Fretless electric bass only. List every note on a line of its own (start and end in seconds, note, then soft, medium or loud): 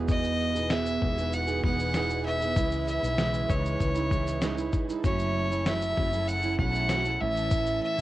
0.00 0.98 E1 loud
1.02 1.60 E1 medium
1.64 2.53 E1 medium
2.56 2.99 C#2 loud
3.03 3.46 B1 medium
3.50 3.78 C#2 medium
3.80 4.69 C#2 loud
5.04 5.93 F#1 loud
5.98 6.55 F#1 medium
6.59 7.16 B1 medium
7.22 7.79 A1 loud